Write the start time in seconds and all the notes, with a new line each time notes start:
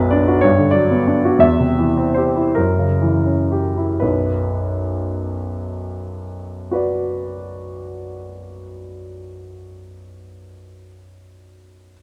Already playing: B1 F#2 F#3 B4
0.00 B3
0.11 D4 D5
0.28 F#4
0.41 G2 C#5
0.59 D3
0.71 F#3 D5
0.91 B3
1.08 D4
1.25 F#4
1.39 E2 E5
1.60 C3
1.79 E3
1.97 C4
2.14 G4 C5
2.36 E4
2.55 F#2 A#4
2.78 C#3
3.02 E3
3.26 C#4
3.52 G4
3.77 E4
4.00 B1 F#2 B4
6.71 F#4 B4 D5